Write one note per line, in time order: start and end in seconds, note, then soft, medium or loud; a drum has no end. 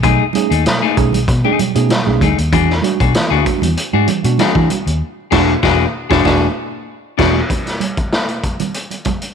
0.03 0.18 B1 medium
0.03 0.20 B2 medium
0.03 0.20 F#3 medium
0.03 0.23 A3 medium
0.03 0.24 D#4 medium
0.03 0.24 G#4 loud
0.03 kick loud
0.03 closed hi-hat medium
0.03 muted conga soft
0.03 low conga medium
0.20 0.26 D#4 soft
0.20 0.26 G#4 medium
0.20 muted conga soft
0.33 0.51 A3 medium
0.33 0.51 C#4 medium
0.33 0.51 D#4 medium
0.33 0.51 G#4 medium
0.33 muted clean electric guitar stroke soft
0.33 closed hi-hat medium
0.33 high conga medium
0.50 0.64 D#2 loud
0.50 0.64 A3 medium
0.50 0.65 D#4 medium
0.50 0.65 G#4 medium
0.50 closed hi-hat soft
0.65 0.82 B2 medium
0.65 0.82 F#3 medium
0.65 muted clean electric guitar stroke soft
0.65 snare loud
0.65 closed hi-hat medium
0.65 muted conga soft
0.82 0.96 A3 medium
0.82 0.96 D#4 medium
0.82 0.97 G#4 medium
0.97 1.24 B1 medium
0.97 1.13 A3 medium
0.97 1.13 C#4 medium
0.97 1.13 D#4 medium
0.97 1.13 G#4 medium
0.97 muted clean electric guitar stroke soft
0.97 kick medium
0.97 closed hi-hat medium
1.13 1.19 D#4 soft
1.13 1.19 G#4 soft
1.13 muted clean electric guitar stroke soft
1.13 closed hi-hat medium
1.13 high conga medium
1.13 low conga medium
1.28 1.42 B2 loud
1.28 muted clean electric guitar stroke soft
1.28 kick loud
1.28 closed hi-hat medium
1.44 1.58 A3 medium
1.44 1.59 A3 medium
1.44 1.59 C#4 medium
1.44 1.59 D#4 medium
1.44 1.60 G#4 medium
1.44 1.59 G#4 medium
1.44 muted conga soft
1.59 1.75 B2 medium
1.59 1.75 F#3 medium
1.59 muted fingered electric bass stroke soft
1.59 muted clean electric guitar stroke soft
1.59 closed hi-hat medium
1.59 high conga medium
1.75 1.88 B2 loud
1.75 1.89 A3 medium
1.75 1.89 C#4 medium
1.75 1.90 D#4 medium
1.75 1.90 G#4 medium
1.75 muted clean electric guitar stroke soft
1.75 closed hi-hat medium
1.89 2.06 B2 medium
1.89 2.06 F#3 medium
1.89 muted clean electric guitar stroke soft
1.89 snare medium
1.89 closed hi-hat medium
1.89 high conga medium
2.06 2.19 B1 medium
2.06 2.20 A3 medium
2.06 2.21 C#4 medium
2.06 2.20 D#4 medium
2.06 2.20 G#4 medium
2.06 muted conga soft
2.21 2.36 D2 loud
2.21 2.38 A3 medium
2.21 2.28 D#4 soft
2.21 2.38 D#4 medium
2.21 2.28 G#4 soft
2.21 2.37 G#4 medium
2.21 kick medium
2.21 closed hi-hat medium
2.21 high conga medium
2.21 low conga medium
2.38 2.53 D#2 medium
2.38 muted clean electric guitar stroke soft
2.38 closed hi-hat medium
2.52 2.80 E2 loud
2.52 2.68 E3 medium
2.52 2.73 D4 medium
2.52 2.73 F#4 medium
2.52 2.73 G#4 medium
2.52 kick loud
2.52 closed hi-hat medium
2.52 muted conga soft
2.52 low conga medium
2.69 2.75 D4 soft
2.69 2.75 F#4 medium
2.69 snare soft
2.82 2.99 G#3 medium
2.82 2.99 D4 medium
2.82 3.00 F#4 medium
2.82 muted clean electric guitar stroke soft
2.82 closed hi-hat medium
2.82 high conga medium
3.00 3.13 B1 loud
3.00 3.13 D4 medium
3.00 3.14 F#4 medium
3.00 3.14 G#4 medium
3.00 kick loud
3.00 closed hi-hat medium
3.14 3.30 E3 medium
3.14 muted clean electric guitar stroke soft
3.14 snare loud
3.14 closed hi-hat medium
3.14 muted conga soft
3.30 3.44 D2 medium
3.30 3.44 D4 medium
3.30 3.45 F#4 medium
3.30 3.45 G#4 medium
3.45 3.61 G#3 medium
3.45 3.61 D4 medium
3.45 3.61 F#4 medium
3.45 muted clean electric guitar stroke soft
3.45 kick medium
3.45 closed hi-hat medium
3.62 3.75 E2 medium
3.62 3.68 D4 soft
3.62 3.68 F#4 soft
3.62 muted clean electric guitar stroke soft
3.62 closed hi-hat medium
3.62 high conga medium
3.62 low conga medium
3.77 muted clean electric guitar stroke soft
3.77 closed hi-hat medium
3.93 4.06 G#2 medium
3.93 4.07 G#3 medium
3.93 4.07 D4 medium
3.93 4.08 F#4 medium
3.93 4.08 G#4 medium
3.93 muted conga soft
4.08 4.24 E3 medium
4.08 muted clean electric guitar stroke soft
4.08 closed hi-hat medium
4.08 high conga medium
4.24 4.37 B2 medium
4.24 4.38 G#3 medium
4.24 4.38 D4 medium
4.24 4.39 F#4 medium
4.24 muted clean electric guitar stroke soft
4.24 closed hi-hat medium
4.38 4.55 E3 medium
4.38 4.68 D4 medium
4.38 4.68 F#4 medium
4.38 4.69 G#4 medium
4.38 snare loud
4.38 closed hi-hat medium
4.38 high conga medium
4.55 4.68 E3 medium
4.55 4.69 G#3 medium
4.55 4.69 D4 medium
4.55 4.69 F#4 medium
4.55 kick medium
4.55 muted conga soft
4.70 4.76 D4 soft
4.70 4.77 F#4 soft
4.70 muted clean electric guitar stroke soft
4.70 closed hi-hat medium
4.70 high conga medium
4.70 low conga medium
4.86 5.01 D#2 medium
4.86 muted clean electric guitar stroke soft
4.86 closed hi-hat medium
5.31 5.54 E1 medium
5.31 5.53 G#3 loud
5.31 5.54 D4 loud
5.31 5.54 F#4 loud
5.31 5.53 G#4 medium
5.31 kick loud
5.31 snare loud
5.31 crash medium
5.63 5.85 E1 loud
5.63 5.85 D4 loud
5.63 5.85 F#4 loud
5.63 5.84 G#4 loud
5.63 kick loud
5.63 snare loud
6.10 6.23 E1 medium
6.10 6.23 G#3 loud
6.10 6.23 D4 medium
6.10 6.24 D4 loud
6.10 6.23 F#4 medium
6.10 6.23 F#4 loud
6.10 6.23 G#4 loud
6.10 kick loud
6.10 snare loud
6.25 6.47 E1 medium
6.25 6.46 G#3 medium
6.25 6.47 D4 loud
6.25 6.47 D4 medium
6.25 6.47 F#4 loud
6.25 6.47 F#4 medium
6.25 6.47 G#4 medium
6.25 kick loud
6.25 snare loud
7.18 7.40 E1 loud
7.18 7.40 G#3 loud
7.18 7.40 D4 loud
7.18 7.40 F#4 loud
7.18 7.40 G#4 medium
7.18 kick loud
7.18 snare loud
7.18 crash medium
7.50 kick loud
7.50 closed hi-hat medium
7.66 snare soft
7.66 closed hi-hat medium
7.66 muted conga soft
7.80 closed hi-hat medium
7.80 high conga medium
7.97 kick loud
7.97 closed hi-hat soft
8.13 snare loud
8.29 closed hi-hat soft
8.43 kick medium
8.43 closed hi-hat medium
8.59 closed hi-hat medium
8.59 high conga medium
8.59 low conga medium
8.74 closed hi-hat medium
8.91 closed hi-hat soft
8.91 muted conga soft
9.05 kick medium
9.05 closed hi-hat medium
9.05 high conga medium
9.22 closed hi-hat medium